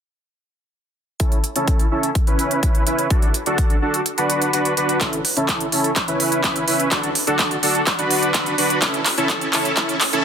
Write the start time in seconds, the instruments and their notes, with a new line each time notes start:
1.20 supersaw synth C#4 E4 A4, kick, closed hi-hat
1.32 closed hi-hat
1.44 closed hi-hat
1.56 supersaw synth C#4 E4 A4, closed hi-hat
1.68 kick, closed hi-hat
1.79 closed hi-hat
1.91 supersaw synth C#4 E4 A4
2.03 closed hi-hat
2.15 kick, closed hi-hat
2.27 supersaw synth C#4 E4 B4, closed hi-hat
2.39 closed hi-hat
2.51 closed hi-hat
2.63 supersaw synth C#4 E4 B4, kick, closed hi-hat
2.75 closed hi-hat
2.87 supersaw synth C#4 E4 B4, closed hi-hat
2.99 closed hi-hat
3.10 supersaw synth D4 F#4 A4, kick, closed hi-hat
3.22 closed hi-hat
3.34 closed hi-hat
3.46 supersaw synth D4 F#4 A4, closed hi-hat
3.58 kick, closed hi-hat
3.70 closed hi-hat
3.82 supersaw synth D4 F#4 A4
3.94 closed hi-hat
4.06 closed hi-hat
4.18 supersaw synth D4 F#4 B4, closed hi-hat
4.30 closed hi-hat
4.42 closed hi-hat
4.53 supersaw synth D4 F#4 B4, closed hi-hat
4.65 closed hi-hat
4.77 supersaw synth D4 F#4 B4, closed hi-hat
4.89 closed hi-hat
5.01 supersaw synth C#4 E4 A4, kick, clap, closed hi-hat
5.13 closed hi-hat
5.25 open hi-hat
5.37 supersaw synth C#4 E4 A4, closed hi-hat
5.49 kick, clap, closed hi-hat
5.60 closed hi-hat
5.72 supersaw synth C#4 E4 A4, open hi-hat
5.84 closed hi-hat
5.96 kick, clap, closed hi-hat
6.08 supersaw synth C#4 E4 B4, closed hi-hat
6.20 open hi-hat
6.32 closed hi-hat
6.44 supersaw synth C#4 E4 B4, kick, clap, closed hi-hat
6.56 closed hi-hat
6.68 supersaw synth C#4 E4 B4, open hi-hat
6.80 closed hi-hat
6.91 supersaw synth D4 F#4 A4, kick, clap, closed hi-hat
7.03 closed hi-hat
7.15 open hi-hat
7.27 supersaw synth D4 F#4 A4, closed hi-hat
7.39 kick, clap, closed hi-hat
7.51 closed hi-hat
7.63 supersaw synth D4 F#4 A4, open hi-hat
7.75 closed hi-hat
7.87 kick, clap, closed hi-hat
7.99 supersaw synth D4 F#4 B4, closed hi-hat
8.11 open hi-hat
8.23 closed hi-hat
8.34 supersaw synth D4 F#4 B4, kick, clap, closed hi-hat
8.46 closed hi-hat
8.58 supersaw synth D4 F#4 B4, open hi-hat
8.70 closed hi-hat
8.82 supersaw synth C#4 E4 A4, kick, clap, closed hi-hat
8.94 closed hi-hat
9.06 clap, open hi-hat
9.18 supersaw synth C#4 E4 A4, closed hi-hat
9.30 kick, clap, closed hi-hat
9.41 closed hi-hat
9.53 supersaw synth C#4 E4 A4, clap, open hi-hat
9.65 closed hi-hat
9.77 supersaw synth C#4 E4 A4, kick, clap, closed hi-hat
9.89 closed hi-hat
10.01 clap, open hi-hat
10.13 supersaw synth C#4 E4 A4, closed hi-hat